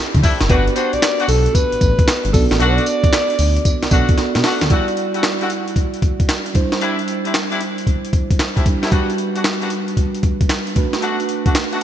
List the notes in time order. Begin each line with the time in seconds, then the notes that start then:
Already playing: C4 E4 G4 A4 D5
0.15 D3, kick, closed hi-hat
0.23 G3 C4 D4 E4, kick, open hi-hat, tambourine
0.41 F#1, snare, closed hi-hat
0.48 G1 G3 B3 D4 F#4 G4 B4 D5, kick, closed hi-hat
0.67 closed hi-hat
0.76 G3 B3 D4 F#4 C5, closed hi-hat, tambourine
0.93 B1 D5, closed hi-hat
1.02 snare, clap, closed hi-hat, tambourine
1.19 G3 B3 D4 F#4, closed hi-hat
1.28 B1 A4, open hi-hat, tambourine
1.46 closed hi-hat
1.55 B4, kick, closed hi-hat, tambourine
1.72 A1, closed hi-hat
1.81 A1, kick, closed hi-hat, tambourine
1.99 kick, closed hi-hat
2.08 snare, clap, closed hi-hat, tambourine
2.25 G1, closed hi-hat
2.33 B1 B3 D4 F#4 A4 D5, kick, open hi-hat, tambourine
2.51 A1, snare, closed hi-hat
2.60 B1 A3 B3 D4 F#4 D5, closed hi-hat
2.78 closed hi-hat
2.86 closed hi-hat, tambourine
3.04 D2, kick, closed hi-hat
3.13 snare, clap, closed hi-hat, tambourine
3.30 closed hi-hat
3.39 D2, open hi-hat, tambourine
3.56 closed hi-hat
3.65 kick, closed hi-hat, tambourine
3.83 B1, snare, closed hi-hat
3.91 B1 A3 B3 D4 F#4 A4 D5, kick, closed hi-hat, tambourine
4.09 kick, closed hi-hat
4.18 snare, closed hi-hat
4.35 B2, snare, closed hi-hat
4.44 A3 B3 D4 F#4, snare, open hi-hat
4.61 D2, snare, closed hi-hat
4.69 G3 D4 E4 F#4 D5, kick, closed hi-hat
4.88 closed hi-hat
4.97 closed hi-hat
5.14 G3 D4 E4 F#4, closed hi-hat
5.23 snare, clap, closed hi-hat
5.41 G3 D4 E4 F#4, closed hi-hat
5.50 closed hi-hat
5.68 closed hi-hat
5.76 kick, closed hi-hat
5.94 closed hi-hat
6.02 kick, closed hi-hat
6.20 kick, closed hi-hat
6.29 snare, clap, closed hi-hat
6.46 closed hi-hat
6.53 G3 D4 E4 C5, kick, closed hi-hat
6.72 snare, closed hi-hat
6.81 G3 C4 D4 E4, closed hi-hat
6.99 closed hi-hat
7.08 closed hi-hat
7.25 G3 C4 D4 E4, closed hi-hat
7.34 snare, clap, closed hi-hat
7.51 G3 C4 D4 E4, closed hi-hat
7.61 closed hi-hat
7.78 closed hi-hat
7.87 kick, closed hi-hat
8.05 closed hi-hat
8.13 kick, closed hi-hat
8.31 kick, closed hi-hat
8.39 snare, clap, closed hi-hat
8.56 G3 C4 D4 E4, kick, closed hi-hat
8.66 G3 D4 E4 G4, kick, closed hi-hat
8.82 G3 C4 D4 E4, snare, closed hi-hat
8.91 G3 B3 D4 F#4 B4, kick, closed hi-hat
9.10 closed hi-hat
9.18 closed hi-hat
9.35 G3 B3 D4 F#4, closed hi-hat
9.44 snare, clap, closed hi-hat
9.62 G3 B3 D4 F#4, closed hi-hat
9.70 closed hi-hat
9.88 closed hi-hat
9.97 kick, closed hi-hat
10.15 closed hi-hat
10.23 kick, closed hi-hat
10.41 kick, closed hi-hat
10.49 snare, clap, closed hi-hat
10.67 closed hi-hat
10.75 A3 D4 F#4 B4, kick, closed hi-hat
10.93 snare, closed hi-hat
11.02 A3 B3 D4 F#4, closed hi-hat
11.20 closed hi-hat
11.29 closed hi-hat
11.46 A3 B3 D4 F#4, kick, closed hi-hat
11.55 snare, clap, closed hi-hat
11.72 A3 B3 D4 F#4, closed hi-hat